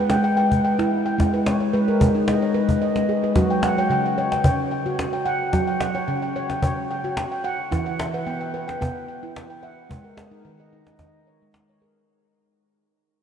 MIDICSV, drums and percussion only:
0, 0, Header, 1, 2, 480
1, 0, Start_track
1, 0, Tempo, 544959
1, 1046, Time_signature, 4, 2, 24, 8
1, 11652, End_track
2, 0, Start_track
2, 0, Title_t, "Cajon"
2, 85, Note_on_c, 9, 38, 44
2, 173, Note_off_c, 9, 38, 0
2, 454, Note_on_c, 9, 36, 36
2, 542, Note_off_c, 9, 36, 0
2, 698, Note_on_c, 9, 38, 36
2, 786, Note_off_c, 9, 38, 0
2, 944, Note_on_c, 9, 38, 13
2, 1032, Note_off_c, 9, 38, 0
2, 1055, Note_on_c, 9, 36, 49
2, 1055, Note_on_c, 9, 38, 16
2, 1143, Note_off_c, 9, 36, 0
2, 1143, Note_off_c, 9, 38, 0
2, 1184, Note_on_c, 9, 38, 15
2, 1272, Note_off_c, 9, 38, 0
2, 1289, Note_on_c, 9, 38, 50
2, 1378, Note_off_c, 9, 38, 0
2, 1533, Note_on_c, 9, 38, 16
2, 1621, Note_off_c, 9, 38, 0
2, 1771, Note_on_c, 9, 36, 49
2, 1859, Note_off_c, 9, 36, 0
2, 2006, Note_on_c, 9, 38, 47
2, 2094, Note_off_c, 9, 38, 0
2, 2366, Note_on_c, 9, 36, 40
2, 2454, Note_off_c, 9, 36, 0
2, 2479, Note_on_c, 9, 38, 17
2, 2567, Note_off_c, 9, 38, 0
2, 2604, Note_on_c, 9, 38, 36
2, 2693, Note_off_c, 9, 38, 0
2, 2843, Note_on_c, 9, 38, 15
2, 2931, Note_off_c, 9, 38, 0
2, 2956, Note_on_c, 9, 36, 50
2, 2956, Note_on_c, 9, 38, 18
2, 3044, Note_off_c, 9, 36, 0
2, 3044, Note_off_c, 9, 38, 0
2, 3196, Note_on_c, 9, 38, 48
2, 3284, Note_off_c, 9, 38, 0
2, 3327, Note_on_c, 9, 38, 16
2, 3415, Note_off_c, 9, 38, 0
2, 3437, Note_on_c, 9, 38, 17
2, 3525, Note_off_c, 9, 38, 0
2, 3805, Note_on_c, 9, 38, 44
2, 3893, Note_off_c, 9, 38, 0
2, 3914, Note_on_c, 9, 36, 53
2, 4002, Note_off_c, 9, 36, 0
2, 4396, Note_on_c, 9, 38, 52
2, 4484, Note_off_c, 9, 38, 0
2, 4872, Note_on_c, 9, 36, 58
2, 4872, Note_on_c, 9, 38, 17
2, 4960, Note_off_c, 9, 36, 0
2, 4960, Note_off_c, 9, 38, 0
2, 5113, Note_on_c, 9, 38, 57
2, 5201, Note_off_c, 9, 38, 0
2, 5240, Note_on_c, 9, 38, 20
2, 5328, Note_off_c, 9, 38, 0
2, 5356, Note_on_c, 9, 38, 18
2, 5444, Note_off_c, 9, 38, 0
2, 5722, Note_on_c, 9, 38, 47
2, 5810, Note_off_c, 9, 38, 0
2, 5835, Note_on_c, 9, 36, 59
2, 5923, Note_off_c, 9, 36, 0
2, 6315, Note_on_c, 9, 38, 63
2, 6404, Note_off_c, 9, 38, 0
2, 6801, Note_on_c, 9, 36, 65
2, 6801, Note_on_c, 9, 38, 21
2, 6889, Note_off_c, 9, 36, 0
2, 6889, Note_off_c, 9, 38, 0
2, 7042, Note_on_c, 9, 38, 67
2, 7130, Note_off_c, 9, 38, 0
2, 7170, Note_on_c, 9, 38, 21
2, 7258, Note_off_c, 9, 38, 0
2, 7290, Note_on_c, 9, 38, 21
2, 7378, Note_off_c, 9, 38, 0
2, 7654, Note_on_c, 9, 38, 46
2, 7742, Note_off_c, 9, 38, 0
2, 7769, Note_on_c, 9, 36, 59
2, 7857, Note_off_c, 9, 36, 0
2, 8247, Note_on_c, 9, 38, 64
2, 8335, Note_off_c, 9, 38, 0
2, 8726, Note_on_c, 9, 36, 66
2, 8814, Note_off_c, 9, 36, 0
2, 8962, Note_on_c, 9, 38, 63
2, 9050, Note_off_c, 9, 38, 0
2, 9084, Note_on_c, 9, 38, 20
2, 9173, Note_off_c, 9, 38, 0
2, 9445, Note_on_c, 9, 38, 20
2, 9533, Note_off_c, 9, 38, 0
2, 9570, Note_on_c, 9, 38, 44
2, 9659, Note_off_c, 9, 38, 0
2, 9679, Note_on_c, 9, 36, 59
2, 9679, Note_on_c, 9, 38, 17
2, 9767, Note_off_c, 9, 36, 0
2, 9767, Note_off_c, 9, 38, 0
2, 9922, Note_on_c, 9, 38, 19
2, 10010, Note_off_c, 9, 38, 0
2, 10164, Note_on_c, 9, 38, 60
2, 10252, Note_off_c, 9, 38, 0
2, 10289, Note_on_c, 9, 38, 17
2, 10377, Note_off_c, 9, 38, 0
2, 10399, Note_on_c, 9, 38, 19
2, 10488, Note_off_c, 9, 38, 0
2, 11652, End_track
0, 0, End_of_file